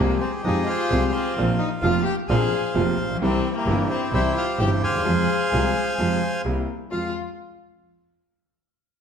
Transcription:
0.00 0.18 C2 loud
0.00 0.18 C2 medium
0.00 0.18 C3 medium
0.00 0.18 F3 medium
0.00 0.18 G#3 medium
0.00 0.19 A#3 medium
0.00 0.18 C4 medium
0.00 0.18 G4 medium
0.00 0.45 G4 medium
0.00 0.42 G#4 medium
0.00 0.19 A#4 medium
0.21 0.32 C4 medium
0.21 0.31 C5 medium
0.43 0.64 F2 loud
0.43 0.65 F2 medium
0.43 0.65 F3 medium
0.43 0.65 G#3 medium
0.43 0.65 C4 medium
0.43 0.65 D#4 medium
0.43 0.65 G4 medium
0.43 1.34 G4 medium
0.43 0.68 G#4 medium
0.43 0.68 D#5 loud
0.66 1.10 F4 medium
0.66 1.34 G#4 medium
0.66 1.10 C5 medium
0.66 1.15 F5 loud
0.90 1.10 C2 loud
0.90 1.10 C2 medium
0.90 1.10 C3 medium
0.90 1.10 F3 medium
0.90 1.10 G#3 medium
0.90 1.10 C4 medium
0.90 1.10 G4 medium
1.12 1.57 C4 medium
1.12 2.02 F4 medium
1.12 1.60 C5 loud
1.37 1.56 A#1 loud
1.37 1.57 A#1 medium
1.37 1.57 A#2 medium
1.37 1.57 C3 medium
1.37 1.57 F3 medium
1.37 1.57 A#3 medium
1.37 1.57 F4 medium
1.58 1.69 D#4 medium
1.58 1.69 D#5 medium
1.82 2.02 F1 loud
1.82 2.03 F1 medium
1.82 2.03 F2 medium
1.82 2.03 C3 medium
1.82 2.02 F3 medium
1.82 2.03 A#3 medium
1.82 2.03 F4 medium
1.82 2.04 F5 loud
2.04 2.14 G4 medium
2.04 2.16 G5 loud
2.28 2.48 A#1 loud
2.28 2.49 A#1 loud
2.28 2.49 A#2 loud
2.28 2.49 C3 medium
2.28 2.49 F3 medium
2.28 2.49 A#3 medium
2.28 2.49 F4 medium
2.28 2.71 G#4 medium
2.28 3.17 C5 medium
2.28 3.17 F5 medium
2.28 2.71 G#5 loud
2.75 2.94 F1 loud
2.75 2.94 F1 medium
2.75 2.94 F2 loud
2.75 2.94 C3 medium
2.75 2.94 F3 medium
2.75 2.95 A#3 medium
2.75 2.95 F4 loud
2.98 3.19 A#1 medium
3.04 3.10 A1 medium
3.10 3.15 A#1 medium
3.15 3.21 B1 medium
3.20 3.40 C2 loud
3.20 3.41 C2 loud
3.20 3.41 C3 loud
3.20 3.41 E3 medium
3.20 3.41 G3 medium
3.20 3.53 C4 medium
3.20 3.41 E4 loud
3.20 3.56 E4 medium
3.20 3.55 G4 medium
3.20 3.54 C5 medium
3.54 3.87 A#3 medium
3.54 4.45 E4 medium
3.54 4.13 G4 medium
3.54 3.88 A#4 medium
3.66 3.86 G1 loud
3.66 3.87 G2 loud
3.66 3.86 C3 medium
3.66 3.87 E3 medium
3.66 3.86 G3 medium
3.66 3.87 E4 medium
3.90 4.12 C4 medium
3.90 4.13 C5 medium
4.12 4.32 C2 loud
4.12 4.33 C2 loud
4.12 4.33 C3 medium
4.12 4.33 E3 medium
4.12 4.33 G3 medium
4.12 4.35 E4 medium
4.12 4.33 E4 medium
4.12 5.02 G4 medium
4.12 4.82 C5 medium
4.12 4.37 E5 loud
4.35 4.57 F4 medium
4.35 4.58 F5 loud
4.58 4.78 G1 loud
4.58 4.79 G1 medium
4.58 4.79 G2 medium
4.58 4.79 C3 medium
4.58 4.80 E3 medium
4.58 4.79 G3 medium
4.58 4.79 E4 medium
4.58 4.70 G4 medium
4.58 4.70 G5 loud
4.82 5.04 D#2 medium
4.82 6.41 G#4 medium
4.82 6.41 C5 medium
4.82 6.42 F5 medium
4.82 6.41 G#5 loud
4.88 4.94 D2 medium
4.95 5.00 D#2 medium
5.01 5.06 E2 medium
5.01 5.24 F2 loud
5.01 5.24 C3 medium
5.01 5.24 F3 medium
5.01 5.24 G#3 medium
5.05 5.24 F2 medium
5.05 5.25 F4 medium
5.52 5.71 C2 loud
5.52 5.72 C2 medium
5.52 5.72 C3 medium
5.52 5.72 F3 medium
5.52 5.72 G#3 medium
5.52 5.72 F4 medium
5.98 6.18 F2 medium
5.98 6.18 C3 medium
5.98 6.19 F3 medium
5.98 6.18 G#3 medium
5.98 6.18 F4 medium
6.45 6.64 C2 loud
6.45 6.65 C2 medium
6.45 6.65 C3 medium
6.45 6.65 G3 medium
6.45 6.65 A#3 medium
6.45 6.65 E4 medium
6.91 7.11 F2 medium
6.91 7.11 G#3 soft
6.91 7.11 C4 medium
6.91 7.13 F4 medium
6.91 7.11 F4 medium
6.91 7.13 F5 medium

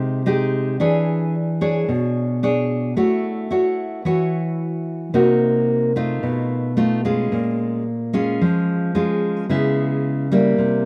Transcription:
0.00 0.77 C3 medium
0.00 0.21 G#3 medium
0.00 0.22 D#4 medium
0.00 0.22 G4 medium
0.26 0.76 G#3 medium
0.26 0.76 D#4 medium
0.26 0.76 G4 medium
0.80 1.86 E3 medium
0.80 1.34 D4 medium
0.80 1.34 G#4 medium
0.80 1.34 C#5 medium
1.61 2.38 D4 medium
1.61 2.39 G#4 medium
1.61 2.39 C#5 medium
1.89 2.95 B2 medium
2.43 2.93 D4 medium
2.43 2.93 G#4 medium
2.43 2.93 C#5 medium
2.96 4.03 A3 medium
2.96 3.47 E4 medium
2.96 3.47 F#4 medium
2.96 3.48 C#5 medium
3.50 4.01 E4 soft
3.50 4.01 F#4 medium
3.50 4.02 C#5 medium
4.05 5.11 E3 medium
4.05 5.10 E4 soft
4.05 5.10 F#4 soft
4.05 5.10 C#5 medium
5.14 6.20 C3 medium
5.14 5.91 A#3 medium
5.14 5.92 D#4 medium
5.14 5.92 F#4 medium
5.96 6.73 A3 medium
5.96 6.73 D#4 medium
5.96 6.74 F4 medium
6.23 7.29 B2 medium
6.77 7.00 A3 medium
6.77 7.00 D#4 medium
6.77 7.00 F4 medium
7.05 7.82 G#3 medium
7.05 7.82 C#4 medium
7.05 7.83 F4 medium
7.32 8.38 A#2 medium
8.13 8.91 G#3 medium
8.13 8.91 C#4 medium
8.13 8.91 F4 medium
8.41 9.47 F3 medium
8.95 9.45 G#3 medium
8.95 9.45 C#4 medium
8.95 9.46 F4 medium
9.49 10.56 C#3 medium
9.49 10.27 G#3 medium
9.49 10.27 B3 soft
9.49 10.27 E4 medium
10.32 10.85 G3 medium
10.32 10.85 A#3 medium
10.32 10.85 E4 medium
10.58 10.85 C3 medium

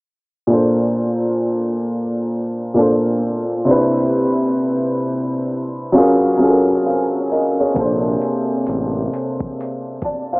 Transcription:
0.47 2.00 A#2 medium
0.47 2.01 A#3 medium
0.47 2.02 D4 medium
0.52 2.02 A4 medium
0.52 2.03 C5 medium
2.74 3.66 A#2 medium
2.74 3.67 A#3 medium
2.74 3.67 D4 medium
2.79 3.69 A4 medium
2.79 3.69 C5 medium
3.65 5.18 C3 medium
3.65 5.19 C4 medium
3.65 5.20 D4 medium
3.69 5.20 E4 medium
3.69 5.21 B4 medium
5.92 6.33 F#3 medium
5.92 6.34 C#4 medium
5.92 6.34 F4 medium
5.97 6.35 G#4 medium
5.97 6.36 A#4 medium
6.37 7.56 F#3 medium
6.37 7.57 C#4 medium
6.37 7.57 F4 medium
6.42 6.87 G#4 medium
6.42 6.50 A4 medium
6.50 6.91 A#4 medium
6.86 7.30 C5 soft
6.86 7.29 F5 medium
7.32 7.59 A#4 medium
7.32 7.59 D#5 medium
7.60 8.04 G#4 medium
7.60 8.03 C#5 medium
7.74 8.17 A#1 loud
7.74 9.27 C3 medium
7.74 9.28 A#3 medium
7.74 7.85 C4 medium
7.74 kick medium
7.74 closed hi-hat medium
7.79 9.30 A4 medium
7.79 9.30 C5 medium
7.84 9.32 D4 medium
8.22 closed hi-hat medium
8.66 9.08 A1 loud
8.66 closed hi-hat medium
9.14 closed hi-hat medium
9.40 kick medium
9.60 closed hi-hat medium
10.02 10.32 D5 soft
10.02 10.31 A5 medium
10.02 kick medium
10.02 closed hi-hat medium
10.33 10.40 C5 medium
10.33 10.40 F5 medium

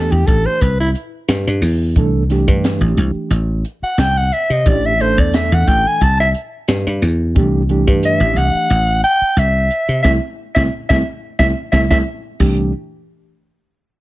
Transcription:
0.00 0.10 E2 medium
0.00 0.58 E3 medium
0.00 0.59 A3 medium
0.00 0.59 D4 medium
0.00 0.59 G4 medium
0.00 0.13 A4 medium
0.12 0.27 E2 medium
0.12 0.28 G4 medium
0.27 0.45 A1 medium
0.27 0.47 A4 medium
0.27 kick medium
0.27 closed hi-hat medium
0.46 0.63 C5 medium
0.61 0.94 C2 medium
0.61 0.80 B4 medium
0.61 kick medium
0.61 closed hi-hat medium
0.80 0.90 E4 medium
0.95 closed hi-hat medium
1.28 1.46 G2 medium
1.28 snare loud
1.28 closed hi-hat medium
1.47 1.61 G2 medium
1.62 1.98 E2 medium
1.62 open hi-hat medium
1.96 2.45 C2 medium
1.96 2.21 E3 medium
1.96 2.22 A3 medium
1.96 2.22 D4 medium
1.96 2.23 A4 medium
1.96 kick loud
1.96 closed hi-hat medium
2.29 3.28 E3 medium
2.29 3.28 A3 medium
2.29 3.29 D4 medium
2.29 3.29 G4 medium
2.29 snare soft
2.29 closed hi-hat medium
2.48 2.80 G2 medium
2.48 kick medium
2.64 snare loud
2.64 closed hi-hat medium
2.81 2.96 A1 medium
2.97 3.14 C2 loud
2.97 closed hi-hat medium
3.15 muted slap bass stroke soft
3.30 3.63 A1 medium
3.30 closed hi-hat medium
3.65 closed hi-hat medium
3.82 4.01 F#5 medium
3.82 muted slap bass stroke soft
3.98 4.30 C2 medium
3.98 4.19 G5 loud
3.98 snare loud
3.98 closed hi-hat medium
4.17 4.34 F#5 medium
4.32 4.54 E5 medium
4.32 closed hi-hat soft
4.50 4.65 C3 medium
4.50 4.69 D#5 medium
4.66 5.18 A1 medium
4.66 4.91 E3 medium
4.66 4.91 A3 medium
4.66 4.92 D4 medium
4.66 4.92 G4 medium
4.66 4.87 D5 medium
4.66 kick loud
4.66 closed hi-hat medium
4.86 5.03 E5 loud
4.99 5.98 E3 medium
4.99 5.98 A3 medium
4.99 5.98 D4 medium
4.99 5.98 A4 medium
4.99 5.21 C5 medium
4.99 closed hi-hat medium
5.18 5.49 E2 medium
5.18 5.36 D5 medium
5.18 kick medium
5.34 5.56 E5 medium
5.34 snare loud
5.34 closed hi-hat medium
5.52 5.66 E2 medium
5.52 5.69 F#5 medium
5.67 5.84 A1 medium
5.67 5.89 G5 loud
5.67 kick medium
5.67 closed hi-hat medium
5.88 6.04 G#5 medium
6.01 6.33 C2 loud
6.01 6.20 A5 loud
6.01 kick medium
6.01 closed hi-hat medium
6.19 6.29 E5 loud
6.19 snare soft
6.34 closed hi-hat medium
6.68 6.85 G2 medium
6.68 snare loud
6.68 closed hi-hat medium
6.87 7.01 G2 medium
7.02 7.38 E2 medium
7.02 snare soft
7.02 closed hi-hat medium
7.35 7.84 C2 medium
7.35 7.60 E3 medium
7.35 7.61 A3 medium
7.35 7.61 D4 medium
7.35 7.62 G4 medium
7.35 kick loud
7.35 closed hi-hat medium
7.69 8.67 E3 medium
7.69 8.67 A3 medium
7.69 8.68 D4 medium
7.69 8.68 G4 medium
7.69 closed hi-hat medium
7.87 8.19 G2 medium
7.87 kick medium
8.03 8.39 E5 loud
8.03 closed hi-hat medium
8.20 8.35 A1 medium
8.36 8.53 C2 medium
8.36 9.03 F#5 loud
8.36 closed hi-hat medium
8.70 9.02 A1 medium
8.70 closed hi-hat medium
9.04 9.40 G5 loud
9.04 closed hi-hat medium
9.21 muted slap bass stroke soft
9.36 9.69 C2 medium
9.36 10.02 E5 medium
9.36 closed hi-hat medium
9.71 closed hi-hat medium
9.89 10.04 C3 medium
10.03 10.18 C2 loud
10.03 10.17 A3 loud
10.03 10.17 C4 medium
10.03 10.17 E4 loud
10.03 10.12 E5 loud
10.03 kick medium
10.03 snare medium
10.55 10.68 C2 medium
10.55 10.67 A3 loud
10.55 10.67 C4 loud
10.55 10.67 E4 medium
10.55 10.63 E5 medium
10.55 kick medium
10.55 snare medium
10.89 11.02 C2 loud
10.89 11.00 A3 loud
10.89 11.00 C4 loud
10.89 11.00 E4 loud
10.89 10.97 E5 loud
10.89 kick loud
10.89 snare medium
11.39 11.52 C2 loud
11.39 11.51 A3 medium
11.39 11.51 C4 medium
11.39 11.51 E4 medium
11.39 11.48 E5 medium
11.39 kick medium
11.39 snare medium
11.72 11.86 C2 loud
11.72 11.84 A3 loud
11.72 11.84 C4 loud
11.72 11.85 E4 loud
11.72 11.81 E5 medium
11.72 kick medium
11.72 snare medium
11.90 12.02 C2 loud
11.90 12.01 A3 loud
11.90 12.01 C4 loud
11.90 12.01 E4 loud
11.90 11.98 E5 medium
11.90 kick loud
11.90 snare medium
12.40 12.71 C2 loud
12.40 12.71 E3 medium
12.40 12.71 A3 medium
12.40 12.71 D4 medium
12.40 12.71 G4 medium
12.40 kick loud
12.40 crash medium

